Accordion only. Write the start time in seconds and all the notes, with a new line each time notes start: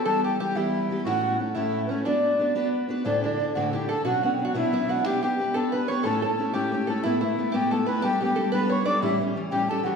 0.04 A4
0.24 G4
0.39 G4
0.54 E4
1.05 F#4
1.55 E4
1.88 C#4
2.04 D4
3.05 D4
3.24 D4
3.55 F#4
3.69 A4
3.74 G4
3.89 A4
4.06 F#4
4.24 F#4
4.47 F#4
4.56 E4
5.05 G4
5.23 G4
5.55 A4
5.73 B4
5.89 C#5
6.04 A4
6.22 A4
6.53 G4
6.72 G4
6.88 A4
7.03 E4
7.22 E4
7.54 G4
7.72 A4
7.88 B4
8.04 G4
8.21 G4
8.53 B4
8.70 C#5
8.87 D5
8.99 F#4
9.03 E4
9.52 G4
9.70 A4
9.85 F#4